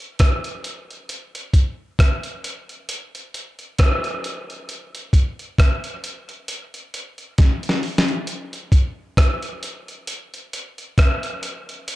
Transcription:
0.19 kick medium
0.19 cross-stick loud
0.19 closed hi-hat medium
0.44 closed hi-hat medium
0.64 closed hi-hat medium
0.91 closed hi-hat soft
1.09 closed hi-hat medium
1.35 closed hi-hat medium
1.53 kick medium
1.53 closed hi-hat medium
1.99 kick medium
1.99 cross-stick medium
1.99 closed hi-hat medium
2.23 closed hi-hat medium
2.44 closed hi-hat medium
2.69 closed hi-hat soft
2.89 closed hi-hat loud
3.15 closed hi-hat soft
3.34 closed hi-hat medium
3.59 closed hi-hat soft
3.78 kick loud
3.78 cross-stick loud
3.78 closed hi-hat medium
4.04 closed hi-hat soft
4.24 closed hi-hat medium
4.50 closed hi-hat soft
4.69 closed hi-hat medium
4.95 closed hi-hat soft
5.13 kick medium
5.13 closed hi-hat medium
5.39 closed hi-hat soft
5.58 kick loud
5.58 cross-stick loud
5.58 closed hi-hat medium
5.84 closed hi-hat soft
6.04 closed hi-hat medium
6.29 closed hi-hat soft
6.48 closed hi-hat medium
6.74 closed hi-hat soft
6.94 closed hi-hat medium
7.18 closed hi-hat soft
7.38 kick loud
7.38 snare soft
7.38 closed hi-hat medium
7.63 closed hi-hat soft
7.69 snare medium
7.83 open hi-hat soft
7.98 snare loud
8.08 closed hi-hat soft
8.27 closed hi-hat medium
8.53 closed hi-hat soft
8.72 kick medium
8.72 closed hi-hat medium
9.17 kick loud
9.17 cross-stick loud
9.17 closed hi-hat medium
9.42 closed hi-hat medium
9.63 closed hi-hat medium
9.88 closed hi-hat soft
10.07 closed hi-hat medium
10.34 closed hi-hat soft
10.53 closed hi-hat medium
10.78 closed hi-hat soft
10.98 kick loud
10.98 cross-stick loud
10.98 closed hi-hat medium
11.23 closed hi-hat medium
11.43 closed hi-hat medium
11.69 closed hi-hat soft
11.88 closed hi-hat medium

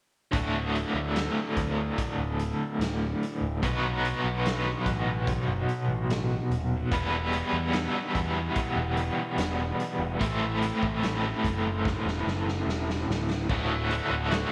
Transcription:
0.32 0.83 D1 medium
0.32 3.59 D2 medium
0.32 3.60 A2 medium
0.32 3.60 D3 medium
0.32 3.60 A3 medium
0.32 3.61 F#4 medium
0.32 kick medium
0.32 closed hi-hat medium
0.75 closed hi-hat soft
0.94 1.28 D2 medium
1.16 snare medium
1.16 closed hi-hat medium
1.56 1.90 D2 medium
1.56 kick medium
1.56 closed hi-hat medium
1.98 kick medium
1.98 closed hi-hat medium
2.18 2.51 D1 medium
2.39 closed hi-hat medium
2.79 3.13 D1 medium
2.79 snare medium
2.79 closed hi-hat medium
3.23 closed hi-hat medium
3.41 3.58 D1 medium
3.62 4.12 B1 medium
3.62 6.89 B2 medium
3.62 6.89 F#3 medium
3.62 6.90 B3 medium
3.62 6.90 D#4 medium
3.62 6.90 F#4 medium
3.62 6.90 B4 medium
3.62 kick medium
3.62 closed hi-hat medium
4.05 closed hi-hat soft
4.24 4.74 B1 medium
4.46 snare medium
4.46 closed hi-hat medium
4.86 5.36 A1 medium
4.86 kick medium
4.86 closed hi-hat soft
5.27 kick loud
5.27 closed hi-hat medium
5.47 5.64 F#1 medium
5.69 closed hi-hat soft
5.88 6.38 A1 medium
6.10 snare medium
6.10 closed hi-hat medium
6.50 6.83 D#1 medium
6.50 closed hi-hat soft
6.91 7.41 E1 medium
6.91 10.18 E2 medium
6.91 10.18 B2 medium
6.91 10.18 E3 medium
6.91 10.18 G3 medium
6.91 10.19 B3 loud
6.91 10.19 E4 medium
6.91 kick medium
6.91 closed hi-hat medium
7.33 closed hi-hat soft
7.53 7.86 E2 medium
7.73 snare medium
7.73 closed hi-hat medium
8.15 8.48 E2 medium
8.15 kick medium
8.15 closed hi-hat soft
8.55 kick loud
8.55 closed hi-hat medium
8.76 9.09 E1 medium
8.97 closed hi-hat medium
9.38 9.71 E1 medium
9.38 snare medium
9.38 closed hi-hat medium
9.80 closed hi-hat medium
9.99 10.16 E1 medium
10.20 10.70 A1 medium
10.20 13.46 A2 medium
10.20 13.47 E3 medium
10.20 13.47 A3 medium
10.20 13.47 C4 medium
10.20 13.47 E4 medium
10.20 13.47 A4 medium
10.20 kick medium
10.20 closed hi-hat medium
10.62 closed hi-hat medium
10.83 11.32 A1 medium
10.83 kick medium
11.03 snare medium
11.03 closed hi-hat medium
11.44 11.94 F#1 medium
11.44 kick medium
11.44 closed hi-hat medium
11.85 kick loud
11.85 snare medium
12.05 12.22 E1 medium
12.05 snare soft
12.25 12.63 F#1 medium
12.25 snare medium
12.48 snare medium
12.67 13.04 E1 medium
12.67 snare medium
12.90 snare medium
13.08 13.45 D1 medium
13.08 snare medium
13.30 snare medium
13.49 13.99 D1 medium
13.49 14.28 D2 medium
13.49 13.90 A2 medium
13.49 13.91 D3 medium
13.49 13.91 A3 medium
13.49 13.93 F#4 medium
13.49 kick medium
13.49 crash medium
13.91 14.29 A2 medium
13.91 14.11 D3 medium
13.91 14.10 A3 medium
13.91 14.10 F#4 medium
13.91 closed hi-hat medium
14.11 14.44 D1 medium
14.11 14.29 D3 soft
14.11 14.30 A3 medium
14.11 14.31 F#4 medium
14.29 14.52 D2 medium
14.29 14.52 A2 medium
14.29 14.51 D3 medium
14.29 14.50 A3 medium
14.29 14.50 F#4 medium
14.29 snare loud
14.29 closed hi-hat medium

